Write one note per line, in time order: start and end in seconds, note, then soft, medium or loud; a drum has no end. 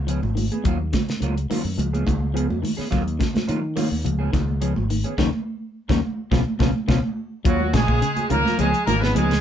0.00 0.19 C#2 medium
0.07 0.30 F3 medium
0.07 0.22 F3 medium
0.07 0.22 B3 medium
0.07 0.22 C#4 medium
0.07 0.21 G#4 medium
0.07 closed hi-hat medium
0.23 0.49 G#1 medium
0.23 muted clean electric guitar stroke soft
0.23 high conga medium
0.35 0.58 D#3 medium
0.35 muted clean electric guitar stroke soft
0.35 open hi-hat soft
0.35 high conga medium
0.52 0.66 B3 soft
0.52 0.65 G#4 medium
0.52 muted clean electric guitar stroke soft
0.52 closed hi-hat soft
0.64 0.91 D#2 medium
0.64 0.87 F#3 medium
0.64 0.80 F#3 medium
0.64 0.80 A#3 medium
0.64 0.80 C#4 medium
0.64 0.79 F4 medium
0.64 kick medium
0.64 closed hi-hat medium
0.80 muted clean electric guitar stroke soft
0.93 1.15 C#3 medium
0.93 kick medium
0.93 snare medium
0.93 closed hi-hat medium
0.93 high conga medium
1.09 muted clean electric guitar stroke soft
1.09 snare medium
1.09 closed hi-hat soft
1.20 1.48 C#2 medium
1.20 1.36 F#3 medium
1.20 1.36 A#3 medium
1.20 1.36 C#4 medium
1.20 1.36 F4 medium
1.20 muted clean electric guitar stroke medium
1.20 closed hi-hat medium
1.37 muted clean electric guitar stroke soft
1.37 closed hi-hat soft
1.50 1.72 D#3 medium
1.50 1.65 F#3 medium
1.50 1.64 A#3 medium
1.50 1.64 C#4 medium
1.50 1.64 F4 medium
1.50 open hi-hat medium
1.50 high conga medium
1.64 1.77 F#2 medium
1.64 muted clean electric guitar stroke soft
1.78 2.04 C#2 loud
1.78 2.00 F3 medium
1.78 muted clean electric guitar stroke soft
1.78 closed hi-hat medium
1.78 high conga medium
1.93 2.05 F3 medium
1.93 2.05 B3 medium
1.93 2.05 C#4 medium
1.93 2.07 G#4 medium
1.93 closed hi-hat soft
2.06 2.47 C#2 medium
2.06 2.29 D#3 medium
2.06 muted clean electric guitar stroke soft
2.06 kick medium
2.06 closed hi-hat soft
2.06 high conga medium
2.34 2.57 F3 medium
2.34 2.49 F3 medium
2.34 2.48 B3 medium
2.34 2.48 C#4 medium
2.34 2.48 G#4 medium
2.34 closed hi-hat medium
2.49 2.63 F2 medium
2.49 muted clean electric guitar stroke soft
2.49 high conga medium
2.62 2.85 D#3 medium
2.62 muted clean electric guitar stroke soft
2.62 open hi-hat medium
2.62 high conga medium
2.77 2.90 B3 soft
2.77 2.89 C#4 soft
2.77 2.90 G#4 medium
2.77 muted fingered electric bass stroke soft
2.77 snare soft
2.90 3.18 D#2 medium
2.90 3.05 F#3 medium
2.90 3.14 F#3 medium
2.90 3.04 A#3 medium
2.90 3.04 C#4 medium
2.90 3.04 F4 medium
2.90 kick medium
2.90 snare soft
2.90 closed hi-hat medium
3.05 muted clean electric guitar stroke soft
3.05 closed hi-hat soft
3.19 3.42 C#3 medium
3.19 kick medium
3.19 snare medium
3.19 closed hi-hat soft
3.19 high conga medium
3.34 muted clean electric guitar stroke soft
3.34 muted fingered electric bass stroke soft
3.34 snare medium
3.34 closed hi-hat soft
3.34 high conga medium
3.47 3.88 D#3 medium
3.47 3.62 F#3 medium
3.47 3.61 A#3 medium
3.47 3.61 C#4 medium
3.47 3.61 F4 medium
3.47 closed hi-hat medium
3.62 muted clean electric guitar stroke soft
3.76 3.99 D#3 medium
3.76 3.90 A#3 medium
3.76 3.90 C#4 medium
3.76 3.89 F4 medium
3.76 open hi-hat medium
3.76 high conga medium
3.92 4.04 D#2 medium
4.04 4.31 C#2 loud
4.04 4.27 F3 medium
4.04 muted clean electric guitar stroke soft
4.04 closed hi-hat medium
4.04 high conga medium
4.19 4.31 F3 medium
4.19 4.32 B3 medium
4.19 4.32 C#4 medium
4.19 4.32 G#4 medium
4.33 4.73 C#2 medium
4.33 4.55 D#3 medium
4.33 muted clean electric guitar stroke soft
4.33 kick medium
4.33 snare soft
4.33 closed hi-hat soft
4.33 high conga medium
4.61 4.76 F3 medium
4.61 4.84 F3 medium
4.61 4.75 B3 medium
4.61 4.75 C#4 medium
4.61 4.74 G#4 medium
4.61 closed hi-hat medium
4.75 5.03 G#1 medium
4.75 muted clean electric guitar stroke soft
4.75 high conga medium
4.90 5.13 D#3 medium
4.90 muted clean electric guitar stroke soft
4.90 open hi-hat medium
5.04 5.17 B3 soft
5.04 5.17 C#4 soft
5.04 5.18 G#4 medium
5.04 closed hi-hat soft
5.18 5.29 D#2 medium
5.18 5.28 C#3 loud
5.18 5.28 D#3 loud
5.18 5.28 F#3 medium
5.18 5.28 A#3 medium
5.18 5.27 C#4 medium
5.18 5.28 D#4 medium
5.18 kick medium
5.18 snare medium
5.18 high conga medium
5.89 6.00 D#2 loud
5.89 5.99 C#3 medium
5.89 5.99 D#3 medium
5.89 5.99 F#3 medium
5.89 5.98 A#3 medium
5.89 5.98 C#4 medium
5.89 5.98 D#4 medium
5.89 kick medium
5.89 snare medium
5.89 high conga medium
6.31 6.43 C#2 medium
6.31 6.41 B2 medium
6.31 6.41 C#3 medium
6.31 6.41 F3 medium
6.31 6.41 B3 medium
6.31 6.41 C#4 medium
6.31 6.41 F4 medium
6.31 kick medium
6.31 snare medium
6.31 high conga medium
6.59 6.71 C#2 medium
6.59 6.69 B2 medium
6.59 6.69 C#3 medium
6.59 6.69 F3 loud
6.59 6.69 B3 loud
6.59 6.69 C#4 medium
6.59 6.69 F4 medium
6.59 kick medium
6.59 snare medium
6.59 high conga medium
6.88 6.99 C#2 medium
6.88 6.98 B2 medium
6.88 6.97 C#3 medium
6.88 6.98 F3 medium
6.88 6.98 B3 medium
6.88 6.98 C#4 medium
6.88 6.98 F4 medium
6.88 kick medium
6.88 snare medium
6.88 high conga medium
7.45 7.72 D#2 medium
7.45 7.81 F#3 medium
7.45 7.67 F#3 medium
7.45 7.60 F#3 medium
7.45 7.73 F#3 medium
7.45 7.59 A#3 medium
7.45 7.60 C#4 medium
7.45 7.82 C#4 medium
7.45 7.59 F4 medium
7.45 7.82 F4 medium
7.45 7.73 F#4 medium
7.45 kick medium
7.45 closed hi-hat medium
7.60 muted clean electric guitar stroke soft
7.60 high conga medium
7.73 8.00 A#1 medium
7.73 7.96 C#3 medium
7.73 8.28 G#3 medium
7.73 8.27 G#4 medium
7.73 muted clean electric guitar stroke soft
7.73 kick medium
7.73 snare medium
7.73 closed hi-hat soft
7.73 high conga loud
7.87 8.01 A#3 soft
7.87 8.01 C#4 soft
7.87 8.01 F4 soft
7.87 kick medium
8.01 8.24 C#3 medium
8.01 muted clean electric guitar stroke soft
8.01 closed hi-hat medium
8.16 muted clean electric guitar stroke soft
8.16 closed hi-hat soft
8.16 high conga medium
8.29 8.44 C#2 medium
8.29 8.53 D#3 medium
8.29 8.58 F#3 medium
8.29 8.44 A#3 medium
8.29 8.58 A#3 medium
8.29 8.59 C#4 medium
8.29 8.44 C#4 medium
8.29 8.59 F4 medium
8.29 8.43 F4 medium
8.29 8.57 A#4 loud
8.29 muted clean electric guitar stroke medium
8.29 closed hi-hat medium
8.29 low conga medium
8.44 muted clean electric guitar stroke soft
8.44 snare soft
8.44 high conga medium
8.58 8.72 C#2 medium
8.58 8.73 F3 medium
8.58 8.81 F3 medium
8.58 8.86 G#3 medium
8.58 8.72 B3 medium
8.58 8.72 C#4 medium
8.58 8.85 G#4 loud
8.58 8.72 G#4 medium
8.58 closed hi-hat medium
8.73 muted clean electric guitar stroke soft
8.73 closed hi-hat soft
8.86 9.14 G#1 medium
8.86 9.09 D#3 medium
8.86 9.01 A#3 medium
8.86 9.00 A#4 loud
8.86 muted clean electric guitar stroke soft
8.86 snare soft
8.86 closed hi-hat soft
8.86 high conga medium
8.86 low conga medium
9.00 9.31 F3 medium
9.00 9.31 B3 medium
9.00 9.14 B3 soft
9.00 9.15 B3 medium
9.00 9.14 C#4 soft
9.00 9.32 D#4 medium
9.00 9.14 G#4 soft
9.00 9.14 B4 medium
9.00 snare medium
9.14 9.41 C#2 medium
9.14 9.32 F3 medium
9.14 9.38 F3 medium
9.14 9.33 B3 medium
9.14 9.33 C#4 medium
9.14 9.41 G#4 medium
9.14 9.33 G#4 medium
9.14 closed hi-hat medium
9.14 high conga medium
9.18 9.41 G#3 medium
9.31 snare medium
9.31 closed hi-hat soft